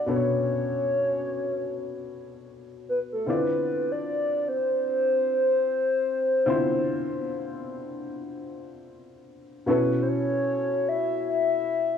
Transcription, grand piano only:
0.06 3.23 B2 medium
0.06 3.23 B3 medium
0.06 3.24 D4 medium
0.06 3.24 A4 medium
0.06 0.16 B4 medium
0.16 3.28 C#5 medium
3.26 6.43 D3 medium
3.26 6.43 C4 medium
3.26 6.44 E4 medium
3.26 6.44 F4 medium
3.26 6.45 D5 medium
6.46 9.63 D3 medium
6.46 9.63 C4 medium
6.46 9.64 E4 medium
6.46 9.64 F4 medium
6.46 9.65 C5 medium
9.66 11.98 B2 medium
9.66 11.98 B3 medium
9.66 11.98 C#4 medium
9.66 11.98 E4 medium
9.66 11.98 A4 medium

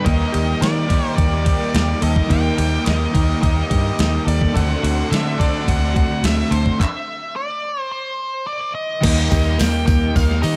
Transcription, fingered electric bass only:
0.06 0.25 D#2 medium
0.35 0.53 D#2 medium
0.62 0.99 D#3 medium
1.18 1.55 D#2 medium
1.74 1.93 D#2 medium
2.02 2.21 D#2 medium
2.30 2.49 D#2 medium
2.59 2.77 D#2 medium
2.87 3.05 D#2 medium
3.15 3.34 D#2 medium
3.43 3.62 D#2 medium
3.72 3.90 G2 medium
3.99 4.18 D#2 medium
4.27 4.45 D#2 medium
4.56 4.74 D2 loud
4.83 5.02 D2 medium
5.12 5.49 D3 medium
5.68 6.05 D2 medium
6.24 6.42 D2 medium
6.51 6.70 D2 medium
9.04 9.30 D#2 loud
9.32 9.58 D#2 medium
9.60 9.86 D#2 medium
9.88 10.14 D#2 medium
10.16 10.42 D#2 loud
10.44 10.56 D#3 loud

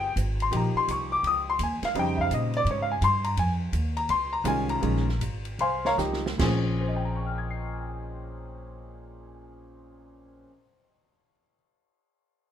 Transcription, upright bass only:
0.00 0.15 G1 medium
0.16 0.51 G#1 medium
0.52 0.73 A#1 medium
0.75 muted upright bass stroke soft
0.87 1.22 C2 medium
1.23 1.57 C#2 medium
1.59 1.80 D#2 medium
1.82 muted upright bass stroke soft
1.94 2.29 F2 medium
2.30 2.64 A#2 medium
2.65 3.00 G#2 medium
3.01 3.36 G2 medium
3.37 3.71 F2 medium
3.73 4.07 D#2 medium
4.09 4.43 C#2 medium
4.44 4.80 C2 medium
4.82 5.19 A#1 medium
5.19 5.57 G#1 medium
5.59 5.97 C2 medium
5.98 6.38 C#2 medium
6.40 10.44 A#1 medium

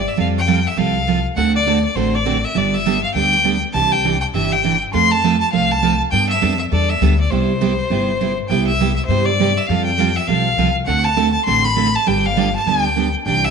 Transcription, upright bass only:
0.17 0.65 F2 medium
0.77 1.24 C2 medium
1.36 1.84 D2 medium
1.95 2.43 A1 medium
2.55 3.03 G1 medium
3.14 3.62 D2 medium
3.74 4.22 C2 medium
4.34 4.81 G1 medium
4.94 5.41 F2 medium
5.53 6.01 C2 medium
6.12 6.36 G2 medium
6.42 6.68 F2 medium
6.72 6.97 E2 medium
7.01 7.27 D2 medium
7.31 7.78 C2 medium
7.90 8.38 G1 medium
8.50 8.97 C2 medium
9.08 9.56 G2 medium
9.69 10.16 F2 medium
10.28 10.53 B1 medium
10.57 10.83 C2 medium
10.88 11.35 D2 medium
11.47 11.95 A1 medium
12.07 12.54 G1 medium
12.66 13.13 D2 medium
13.26 13.50 C2 medium

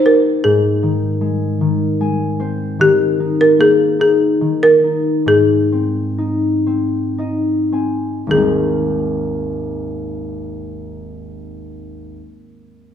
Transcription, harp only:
0.00 0.50 D#3 medium
0.00 2.51 A#3 medium
0.00 0.27 C#4 soft
0.00 2.38 D#4 medium
0.00 0.28 F4 soft
0.06 0.50 G4 soft
0.44 2.86 G#2 medium
0.83 1.60 D#3 soft
1.21 1.67 G#3 soft
1.61 2.78 D#3 medium
2.00 2.86 G#3 soft
2.00 3.51 G#5 medium
2.40 5.40 C4 soft
2.40 4.38 C5 medium
2.79 4.40 D#3 medium
3.20 3.99 D#4 soft
3.59 6.80 A#3 soft
3.99 4.83 D#4 soft
4.41 5.32 D#3 soft
4.84 6.18 D#4 soft
5.26 8.36 G#2 medium
5.72 6.66 C4 soft
6.18 7.18 D#4 soft
6.67 7.72 C4 soft
7.18 8.36 D#4 soft
7.18 8.98 D#5 medium
7.72 8.34 C4 soft
7.72 9.23 G#5 medium
8.27 12.17 G#1 soft
8.27 12.19 D#2 soft
8.27 12.20 D#3 soft
8.32 11.77 G#3 soft
8.32 11.48 C4 soft
8.32 11.50 D#4 soft

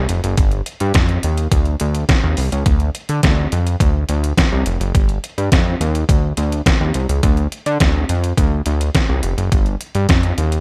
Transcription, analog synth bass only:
0.09 0.21 F1 medium
0.24 0.36 F#1 loud
0.38 0.62 G1 loud
0.81 0.93 G2 loud
0.95 1.19 F2 loud
1.24 1.48 D#2 loud
1.52 1.76 D2 medium
1.81 2.05 D2 loud
2.24 2.35 D#2 loud
2.38 2.50 C2 medium
2.52 2.64 C#2 loud
2.66 2.90 D2 loud
3.09 3.21 D3 loud
3.23 3.47 D2 loud
3.52 3.76 F2 loud
3.80 4.04 D2 medium
4.09 4.33 D2 medium
4.52 4.64 C2 loud
4.66 4.78 F1 medium
4.80 4.92 F#1 loud
4.95 5.19 G1 loud
5.38 5.50 G2 medium
5.52 5.76 F2 loud
5.81 6.05 D#2 loud
6.09 6.33 D2 medium
6.38 6.62 D2 loud
6.81 6.93 D#2 loud
6.95 7.07 C2 medium
7.09 7.21 C#2 medium
7.23 7.47 D2 loud
7.66 7.78 D3 loud
7.81 8.05 D2 loud
8.09 8.33 F2 medium
8.38 8.62 D2 medium
8.66 8.90 D2 medium
9.09 9.21 C2 medium
9.23 9.35 F1 medium
9.38 9.50 F#1 loud
9.52 9.76 G1 loud
9.95 10.07 G2 loud
10.09 10.33 F2 loud
10.38 10.60 D#2 loud

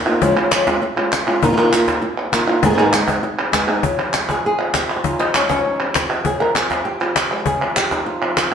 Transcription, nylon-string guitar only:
0.06 0.22 A#3 medium
0.06 0.21 D#4 soft
0.06 0.21 F4 medium
0.21 0.36 C#3 medium
0.21 0.36 F3 medium
0.21 0.36 G#3 loud
0.21 0.36 C#4 medium
0.21 0.35 F4 loud
0.36 0.50 G#3 soft
0.36 0.51 C#4 medium
0.36 0.51 F4 medium
0.51 0.66 F3 medium
0.51 0.66 G#3 medium
0.51 0.66 C#4 medium
0.51 0.65 F4 medium
0.66 0.81 G#3 soft
0.66 0.81 C#4 medium
0.66 0.81 F4 medium
0.82 muted nylon-string guitar stroke medium
0.96 1.27 G#3 soft
0.96 1.27 C#4 soft
0.96 1.26 F4 soft
1.27 1.43 G#3 soft
1.27 1.42 C#4 medium
1.27 1.42 F4 medium
1.42 1.56 A#2 medium
1.42 1.45 D#3 loud
1.42 1.45 A#3 medium
1.42 1.46 D#4 loud
1.42 1.46 F4 loud
1.48 1.51 D#3 medium
1.48 1.51 A#3 medium
1.48 1.52 D#4 medium
1.48 1.52 F4 medium
1.52 1.56 D#3 medium
1.52 1.56 A#3 medium
1.52 1.57 D#4 medium
1.52 1.57 F4 medium
1.57 1.72 A#2 medium
1.57 1.72 D#3 medium
1.57 1.72 A#3 medium
1.57 1.71 D#4 medium
1.57 1.70 F4 medium
1.71 2.01 A#3 soft
1.71 2.01 D#4 soft
1.71 2.01 F4 medium
2.02 muted nylon-string guitar stroke medium
2.32 2.47 D#3 medium
2.32 2.47 A#3 medium
2.32 2.48 D#4 medium
2.32 2.47 F4 medium
2.48 2.63 A#3 soft
2.48 2.63 D#4 soft
2.48 2.62 F4 medium
2.63 2.77 G#2 medium
2.63 2.68 D#3 medium
2.63 2.69 G#3 medium
2.63 2.68 B3 medium
2.63 2.69 D#4 medium
2.63 2.69 G#4 loud
2.69 2.72 D#3 medium
2.69 2.73 G#3 medium
2.69 2.73 B3 medium
2.69 2.74 D#4 medium
2.69 2.73 G#4 medium
2.74 2.77 D#3 medium
2.74 2.77 G#3 medium
2.74 2.77 B3 medium
2.74 2.78 D#4 medium
2.74 2.78 G#4 medium
2.78 2.92 G#2 medium
2.78 2.93 D#3 medium
2.78 2.93 G#3 medium
2.78 2.92 B3 medium
2.78 2.92 D#4 loud
2.78 2.91 G#4 medium
2.92 3.22 G#3 medium
2.92 3.22 B3 soft
2.92 3.23 D#4 medium
2.92 3.22 G#4 medium
3.23 muted nylon-string guitar stroke medium
3.52 3.67 G#3 medium
3.52 3.67 B3 medium
3.52 3.67 D#4 medium
3.52 3.66 G#4 medium
3.67 3.83 G#3 soft
3.67 3.83 B3 soft
3.67 3.83 D#4 medium
3.67 3.84 G#4 medium
3.83 3.98 C#3 medium
3.83 4.29 F4 medium
3.98 4.58 F3 medium
4.14 5.34 G#3 soft
4.31 4.45 G#4 loud
4.46 4.75 G#4 loud
4.58 5.07 F3 medium
4.76 4.91 G4 medium
4.91 4.96 F4 medium
4.96 5.03 G4 medium
5.04 5.19 C#3 medium
5.04 5.65 D#4 soft
5.04 5.50 F4 medium
5.19 5.80 F3 medium
5.35 7.31 G#3 soft
5.65 6.28 D#4 soft
5.80 6.40 F3 medium
5.95 6.25 G4 medium
6.25 6.40 C#3 medium
6.25 6.40 G#4 medium
6.40 6.99 F3 medium
6.40 6.55 A#4 medium
6.55 6.85 G#4 medium
6.85 7.00 G4 medium
7.00 7.44 F3 medium
7.00 7.16 F4 medium
7.16 7.46 G4 medium
7.32 8.54 G#3 soft
7.46 7.61 C#3 medium
7.46 7.75 G#4 medium
7.61 8.21 F3 medium
7.76 8.06 G4 medium
7.92 8.51 D#4 soft
8.06 8.54 F4 medium
8.22 8.54 F3 medium

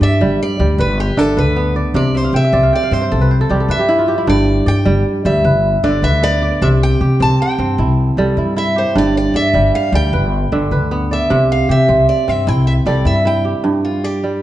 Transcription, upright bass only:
0.01 0.22 G2 medium
0.21 0.36 G1 medium
0.59 0.80 D2 loud
0.78 1.09 G1 loud
1.17 1.38 G1 medium
1.37 1.83 D2 medium
1.94 2.25 C2 loud
2.33 2.54 C3 medium
2.53 2.68 C2 loud
2.91 3.13 G2 medium
3.11 3.42 C2 loud
3.49 3.70 C2 medium
3.68 4.15 G2 medium
4.27 4.59 G1 loud
4.66 4.87 G2 medium
4.86 5.02 G1 medium
5.25 5.46 D2 loud
5.44 5.76 G1 loud
5.83 6.04 G1 medium
6.02 6.49 D2 medium
6.62 6.93 C2 loud
7.01 7.22 C3 medium
7.20 7.36 C2 loud
7.58 7.80 G2 medium
7.78 8.09 C2 loud
8.17 8.38 C2 medium
8.37 8.84 G2 medium
8.96 9.27 G1 loud
9.34 9.55 G2 medium
9.54 9.69 G1 medium
9.92 10.14 D2 loud
10.13 10.44 G1 loud
10.52 10.73 G1 medium
10.71 11.18 D2 medium
11.31 11.61 C2 medium
11.69 11.90 C3 medium
11.89 12.04 C2 medium
12.28 12.48 G2 medium
12.47 12.78 C2 loud
12.86 13.07 C2 medium
13.05 13.52 G2 medium

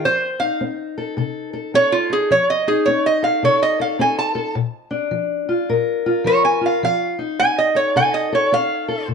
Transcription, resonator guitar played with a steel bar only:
0.05 0.39 C5 loud
0.40 0.60 F5 medium
1.75 1.93 C#5 loud
1.92 2.11 F4 medium
2.13 2.31 G#4 medium
2.32 2.49 C#5 loud
2.50 2.68 D#5 medium
2.68 2.86 G#4 medium
2.86 3.05 C#5 medium
3.06 3.24 D#5 medium
3.24 3.43 F5 medium
3.45 3.62 C#5 medium
3.63 3.81 D#5 loud
3.81 4.00 F5 medium
4.01 4.18 G#5 medium
4.19 4.55 A5 medium
6.27 6.44 C#5 medium
6.45 6.63 G#5 medium
6.66 6.83 F5 medium
6.85 7.18 F5 loud
7.40 7.58 G#5 loud
7.58 7.77 D#5 medium
7.76 7.95 C#5 medium
7.97 8.15 G#5 loud
8.14 8.33 D#5 loud
8.35 8.52 C#5 medium
8.54 9.08 F5 loud

